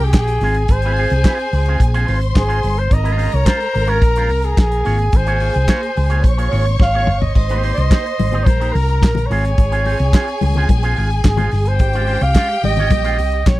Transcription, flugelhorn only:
0.04 G#4
0.18 G#4
0.72 C5
2.37 G#4
2.79 C5
2.93 D#5
3.34 C#5
3.46 C5
3.89 A#4
4.44 G#4
4.59 G#4
5.16 C5
6.82 F5
7.20 D#5
7.34 D#5
7.74 D#5
8.45 C5
8.72 A#4
9.26 C#5
11.25 G#4
11.68 C5
12.23 F5
12.65 D#5
13.47 C#5

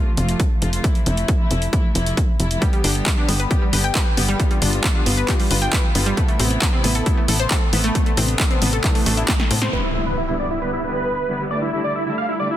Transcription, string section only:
Already playing: C3 F3 A3 F4
0.17 C3 F3 A3 F4
0.62 C3 F3 A3 F4
0.73 C3 F3 A3 F4
0.84 C3 F3 A3 E4
1.06 C3 F3 A3 E4
1.40 C3 F3 A3 E4
1.73 C3 F3 A3 E4
1.95 C3 F3 A3 E4
2.39 C3 F3 A3 E4
2.50 C3 F3 A3 E4
2.61 D3 G3 B3 G4
2.84 D3 G3 B3 G4
3.17 D3 G3 B3 G4
3.51 D3 G3 B3 G4
3.73 D3 G3 B3 G4
4.17 D3 G3 B3 G4
4.29 D3 G3 B3 G4
4.40 D3 G3 B3 F4
4.62 D3 G3 B3 F4
4.95 D3 G3 B3 F4
5.28 D3 G3 B3 F4
5.51 D3 G3 B3 F4
5.95 D3 G3 B3 F4
6.06 D3 G3 B3 F4
6.17 C3 A3 B3 E4
6.39 C3 A3 B3 E4
6.73 C3 A3 B3 E4
7.06 C3 A3 B3 E4
7.29 C3 A3 B3 E4
7.73 C3 A3 B3 E4
7.84 C3 A3 B3 E4
7.95 C3 A3 B3 D4
8.17 C3 A3 B3 D4
8.51 C3 A3 B3 D4
8.84 C3 A3 B3 D4
9.06 C3 A3 B3 D4
9.51 C3 A3 B3 D4
9.62 C3 A3 B3 D4
9.73 D3 G3 B3 E4
9.95 D3 G3 B3 E4
10.28 D3 G3 B3 E4
10.62 D3 G3 B3 E4
10.84 D3 G3 B3 E4
11.28 D3 G3 B3 E4
11.39 D3 G3 B3 E4
11.51 D3 G3 A3 E4
11.73 D3 G3 A3 E4
12.06 D3 G3 A3 E4
12.40 D3 G3 A3 E4

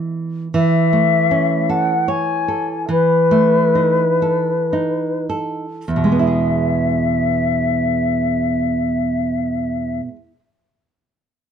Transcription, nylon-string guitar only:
Already playing: E3 G#3 E4
0.54 E3
0.93 A3
1.31 C#4
1.69 A4
2.08 C#5
2.48 A4
2.89 E3
3.31 A3
3.75 D#4
4.22 A4
4.73 D#4
5.29 A4
5.88 E2
5.96 B2
6.04 G#3
6.12 B3
6.19 E4
6.27 G#4

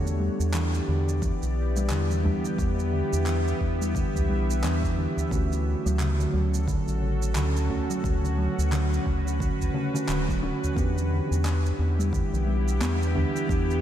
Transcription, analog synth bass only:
Already playing: E2
0.40 E2
0.88 E2
1.42 B1
1.90 E2
2.59 E2
3.13 E2
3.61 E2
4.15 B1
4.63 E2
5.31 D2
5.86 D2
6.34 D2
6.88 A1
7.36 D2
8.04 D2
8.58 D2
9.06 D2
9.60 A1
10.08 D1
10.76 E2
11.31 E2
11.79 E2
12.33 B1
12.81 E2
13.49 E2

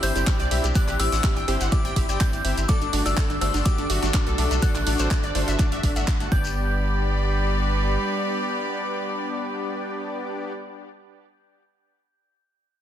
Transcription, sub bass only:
0.03 G1
0.16 G1
0.40 B1
0.51 B1
0.64 B1
0.88 A1
1.00 A1
1.12 A1
1.36 G1
1.48 G1
1.61 G1
1.85 G1
1.96 G1
2.09 G1
2.33 G1
2.45 G1
2.57 G1
2.82 G1
2.93 G1
3.06 G1
3.30 G1
3.41 G1
3.54 G1
3.78 G1
3.90 G1
4.03 G1
4.27 B1
4.38 B1
4.51 B1
4.75 A1
4.87 A1
4.99 A1
5.24 G1
5.35 G1
5.48 G1
5.72 G1
5.83 G1
5.96 G1
6.20 G1
6.32 G1

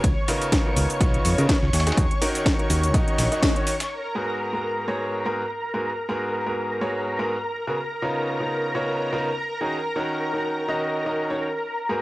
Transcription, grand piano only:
0.28 C#3 B3 D#4 F4 A#4
0.66 C#3 B3 D#4 F4 A#4
1.01 C#3 B3 D#4 F4 C#5
1.38 C#3 B3 D#4 F4 A#4
1.87 D#3 C#4 D#4 F#4 G#4
2.22 D#3 C#4 D#4 F#4 A#4
2.59 D#3 C#4 D#4 F#4 A#4
2.94 D#3 C#4 D#4 F#4 D#5
3.32 D#3 C#4 D#4 F#4 D#5
3.56 D#3 C#4 D#4 F#4 C#5
4.15 G#2 B3 F#4 G#4 A#4
4.53 G#2 B3 F#4 G#4 A#4
4.88 G#2 B3 F#4 G#4 C#5
5.26 G#2 B3 F#4 G#4 A#4
5.74 G#2 B3 F#4 G#4 A#4
6.09 G#2 B3 F#4 G#4 A#4
6.46 G#2 B3 F#4 G#4 A#4
6.81 G#2 B3 F#4 G#4 C#5
7.19 G#2 B3 F#4 G#4 A#4
7.67 C#3 B3 F#4 G#4 A#4
8.02 C#3 B3 C#4 D#4 F4 A#4
8.40 C#3 B3 C#4 D#4 F4 A#4
8.75 C#3 B3 C#4 D#4 F4 C#5
9.12 C#3 B3 C#4 D#4 F4 A#4
9.61 D#3 C#4 D#4 F#4 G#4
9.96 D#3 C#4 D#4 F#4 A#4
10.33 D#3 C#4 D#4 F#4 A#4
10.68 D#3 C#4 D#4 F#4 D#5
11.06 D#3 C#4 D#4 F#4 D#5
11.30 D#3 C#4 D#4 F#4 C#5
11.89 G#2 B3 F#4 G#4 A#4

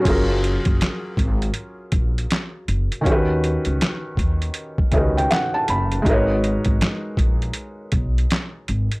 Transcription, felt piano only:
0.00 F#3 C#4
0.04 F4 G#4
0.09 A#4
3.01 D#3 C#4
3.06 F#4 G4
3.12 B4
4.91 D#3 C#4 F#4 G4 D#5
4.96 B4
5.17 G5
5.31 F#5
5.54 A5
5.70 B5
6.02 G#3 D#4
6.06 F#4 A#4
6.10 B4 C#5

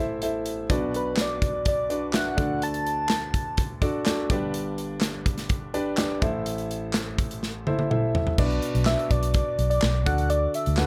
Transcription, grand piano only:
Already playing: A1 A2 E4 A4 C5 E5
0.22 E4 A4 C5 E5
0.70 B1 B2 D4 F#4 B4 D5
1.90 D4 F#4 B4 D5
2.13 D4 F#4 B4 E5
2.37 D2 D3 D4 F#4 A4 D5
3.82 D4 F#4 A4 D5
4.06 D4 F#4 A4 D5
4.31 G1 G2 D4 G4 B4 D5
5.74 D4 G4 B4 D5
5.98 D4 G4 B4 D5
6.22 A1 A2 E4 A4 C5 E5
7.67 E4 A4 C5 E5
7.90 E4 A4 C5 E5
8.39 B2 D4 F#4 B4 D5
8.86 D4 F#4 B4 D5
10.06 D3 D4 F#4 A4 D5
10.79 D4 F#4 A4 B4

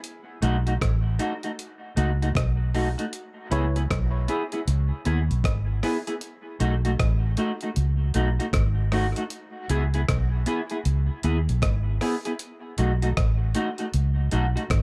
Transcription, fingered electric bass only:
0.43 B1
0.82 A1
1.97 C#2
2.36 B1
3.52 C#2
3.91 B1
4.68 C#2
5.07 D#2
5.31 B1
5.45 G#1
6.61 B1
7.00 A1
7.77 C#2
8.15 B1
8.53 G#1
9.70 C#2
10.09 B1
10.86 C#2
11.24 D#2
11.49 B1
11.62 G#1
12.79 B1
13.17 A1
13.94 C#2
14.33 B1
14.70 G#1

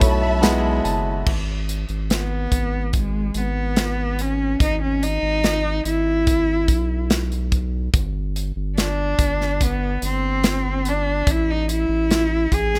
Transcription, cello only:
Already playing: A3
2.13 B3
2.96 G#3
3.37 B3
4.21 C#4
4.62 D#4
4.82 C#4
5.03 D#4
5.86 E4
8.78 D4
9.63 B3
10.05 C4
10.88 D4
11.30 E4
11.51 D#4
11.71 E4
12.54 G#4

